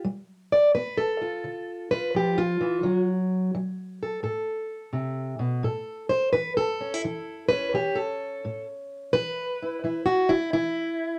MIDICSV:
0, 0, Header, 1, 2, 480
1, 0, Start_track
1, 0, Tempo, 699301
1, 34, Time_signature, 4, 2, 24, 8
1, 7679, End_track
2, 0, Start_track
2, 0, Title_t, "Steel-string acoustic guitar"
2, 0, Program_c, 0, 25
2, 31, Note_on_c, 0, 55, 77
2, 360, Note_on_c, 0, 74, 99
2, 479, Note_off_c, 0, 55, 0
2, 510, Note_off_c, 0, 74, 0
2, 513, Note_on_c, 0, 59, 65
2, 513, Note_on_c, 0, 71, 112
2, 669, Note_on_c, 0, 69, 93
2, 671, Note_off_c, 0, 71, 0
2, 834, Note_on_c, 0, 65, 47
2, 959, Note_off_c, 0, 59, 0
2, 988, Note_on_c, 0, 50, 67
2, 1308, Note_off_c, 0, 69, 0
2, 1311, Note_on_c, 0, 71, 111
2, 1312, Note_off_c, 0, 65, 0
2, 1319, Note_on_c, 0, 65, 49
2, 1436, Note_off_c, 0, 50, 0
2, 1469, Note_off_c, 0, 71, 0
2, 1473, Note_on_c, 0, 53, 67
2, 1485, Note_on_c, 0, 67, 90
2, 1625, Note_off_c, 0, 65, 0
2, 1633, Note_on_c, 0, 65, 104
2, 1636, Note_off_c, 0, 67, 0
2, 1787, Note_off_c, 0, 53, 0
2, 1789, Note_on_c, 0, 52, 73
2, 1944, Note_on_c, 0, 50, 75
2, 1945, Note_off_c, 0, 52, 0
2, 1947, Note_on_c, 0, 54, 54
2, 2109, Note_off_c, 0, 65, 0
2, 2393, Note_off_c, 0, 50, 0
2, 2426, Note_off_c, 0, 54, 0
2, 2435, Note_on_c, 0, 54, 71
2, 2764, Note_on_c, 0, 69, 51
2, 2879, Note_off_c, 0, 54, 0
2, 2903, Note_on_c, 0, 45, 67
2, 2905, Note_off_c, 0, 69, 0
2, 2908, Note_on_c, 0, 69, 53
2, 3353, Note_off_c, 0, 45, 0
2, 3382, Note_on_c, 0, 48, 68
2, 3698, Note_off_c, 0, 48, 0
2, 3701, Note_on_c, 0, 47, 74
2, 3862, Note_off_c, 0, 47, 0
2, 3865, Note_on_c, 0, 45, 82
2, 3871, Note_off_c, 0, 69, 0
2, 3874, Note_on_c, 0, 69, 57
2, 4180, Note_off_c, 0, 69, 0
2, 4183, Note_on_c, 0, 72, 104
2, 4315, Note_off_c, 0, 45, 0
2, 4339, Note_off_c, 0, 72, 0
2, 4342, Note_on_c, 0, 71, 112
2, 4349, Note_on_c, 0, 52, 61
2, 4504, Note_off_c, 0, 71, 0
2, 4509, Note_on_c, 0, 69, 111
2, 4673, Note_on_c, 0, 61, 49
2, 4762, Note_off_c, 0, 61, 0
2, 4762, Note_on_c, 0, 64, 38
2, 4797, Note_off_c, 0, 52, 0
2, 4831, Note_off_c, 0, 64, 0
2, 4837, Note_on_c, 0, 52, 69
2, 4841, Note_on_c, 0, 64, 50
2, 5135, Note_off_c, 0, 69, 0
2, 5138, Note_on_c, 0, 71, 117
2, 5162, Note_on_c, 0, 61, 49
2, 5282, Note_off_c, 0, 52, 0
2, 5303, Note_off_c, 0, 71, 0
2, 5312, Note_on_c, 0, 52, 67
2, 5315, Note_off_c, 0, 64, 0
2, 5318, Note_on_c, 0, 67, 103
2, 5460, Note_on_c, 0, 69, 89
2, 5473, Note_off_c, 0, 67, 0
2, 5760, Note_off_c, 0, 52, 0
2, 5798, Note_on_c, 0, 45, 73
2, 5945, Note_off_c, 0, 69, 0
2, 6243, Note_off_c, 0, 45, 0
2, 6267, Note_on_c, 0, 71, 115
2, 6272, Note_on_c, 0, 52, 68
2, 6288, Note_off_c, 0, 61, 0
2, 6607, Note_on_c, 0, 64, 52
2, 6721, Note_off_c, 0, 52, 0
2, 6753, Note_on_c, 0, 52, 69
2, 6756, Note_off_c, 0, 64, 0
2, 6759, Note_on_c, 0, 64, 51
2, 6900, Note_off_c, 0, 71, 0
2, 6903, Note_on_c, 0, 66, 102
2, 7056, Note_off_c, 0, 64, 0
2, 7064, Note_on_c, 0, 64, 111
2, 7068, Note_off_c, 0, 66, 0
2, 7202, Note_off_c, 0, 52, 0
2, 7221, Note_off_c, 0, 64, 0
2, 7230, Note_on_c, 0, 64, 121
2, 7234, Note_on_c, 0, 52, 66
2, 7679, Note_off_c, 0, 52, 0
2, 7679, Note_off_c, 0, 64, 0
2, 7679, End_track
0, 0, End_of_file